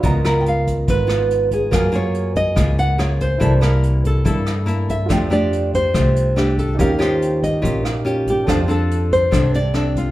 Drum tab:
HH |xxxxxxxx|xxxxxxxx|xxxxxxxx|xxxxxxxx|
SD |-r---r--|r---r-r-|-r---r--|r---r-r-|
BD |o--oo--o|o--oo--o|o--oo--o|o--oo--o|

HH |xxxxxxxx|xxxxxxxx|
SD |-r---r--|r---r-r-|
BD |o--oo--o|o--oo--o|